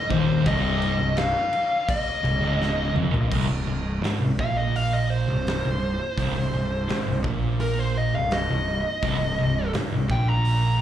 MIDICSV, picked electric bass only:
0, 0, Header, 1, 2, 480
1, 0, Start_track
1, 0, Key_signature, -3, "minor"
1, 0, Tempo, 713436
1, 317, Time_signature, 4, 2, 24, 8
1, 7277, End_track
2, 0, Start_track
2, 0, Title_t, "Picked electric bass"
2, 0, Program_c, 0, 34
2, 72, Note_on_c, 0, 27, 99
2, 297, Note_off_c, 0, 27, 0
2, 309, Note_on_c, 0, 24, 99
2, 647, Note_off_c, 0, 24, 0
2, 666, Note_on_c, 0, 24, 95
2, 894, Note_off_c, 0, 24, 0
2, 1507, Note_on_c, 0, 24, 81
2, 1623, Note_off_c, 0, 24, 0
2, 1630, Note_on_c, 0, 25, 98
2, 1967, Note_off_c, 0, 25, 0
2, 1986, Note_on_c, 0, 29, 107
2, 2102, Note_off_c, 0, 29, 0
2, 2107, Note_on_c, 0, 34, 108
2, 2222, Note_off_c, 0, 34, 0
2, 2229, Note_on_c, 0, 24, 97
2, 2344, Note_off_c, 0, 24, 0
2, 2348, Note_on_c, 0, 24, 81
2, 2463, Note_off_c, 0, 24, 0
2, 2471, Note_on_c, 0, 24, 77
2, 2696, Note_off_c, 0, 24, 0
2, 2713, Note_on_c, 0, 32, 104
2, 2826, Note_off_c, 0, 32, 0
2, 2834, Note_on_c, 0, 24, 78
2, 2946, Note_off_c, 0, 24, 0
2, 2955, Note_on_c, 0, 34, 86
2, 3529, Note_off_c, 0, 34, 0
2, 3555, Note_on_c, 0, 24, 72
2, 3779, Note_off_c, 0, 24, 0
2, 3798, Note_on_c, 0, 24, 92
2, 4021, Note_off_c, 0, 24, 0
2, 4155, Note_on_c, 0, 24, 98
2, 4268, Note_off_c, 0, 24, 0
2, 4282, Note_on_c, 0, 24, 76
2, 4391, Note_off_c, 0, 24, 0
2, 4397, Note_on_c, 0, 24, 84
2, 4621, Note_off_c, 0, 24, 0
2, 4637, Note_on_c, 0, 32, 109
2, 4749, Note_off_c, 0, 32, 0
2, 4754, Note_on_c, 0, 24, 81
2, 4867, Note_off_c, 0, 24, 0
2, 4873, Note_on_c, 0, 34, 89
2, 5449, Note_off_c, 0, 34, 0
2, 5474, Note_on_c, 0, 24, 80
2, 5699, Note_off_c, 0, 24, 0
2, 5716, Note_on_c, 0, 24, 90
2, 5940, Note_off_c, 0, 24, 0
2, 6075, Note_on_c, 0, 24, 93
2, 6188, Note_off_c, 0, 24, 0
2, 6193, Note_on_c, 0, 24, 85
2, 6307, Note_off_c, 0, 24, 0
2, 6319, Note_on_c, 0, 24, 86
2, 6542, Note_off_c, 0, 24, 0
2, 6559, Note_on_c, 0, 32, 107
2, 6670, Note_off_c, 0, 32, 0
2, 6677, Note_on_c, 0, 24, 77
2, 6790, Note_off_c, 0, 24, 0
2, 6795, Note_on_c, 0, 34, 85
2, 7277, Note_off_c, 0, 34, 0
2, 7277, End_track
0, 0, End_of_file